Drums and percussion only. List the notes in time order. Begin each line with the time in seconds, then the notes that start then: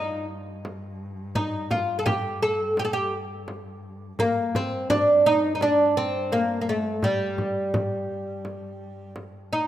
0.65 frame drum
1.35 frame drum
1.70 frame drum
2.06 frame drum
2.77 frame drum
3.48 frame drum
4.19 frame drum
4.55 frame drum
4.90 frame drum
5.61 frame drum
6.32 frame drum
7.02 frame drum
7.38 frame drum
7.74 frame drum
8.45 frame drum
9.16 frame drum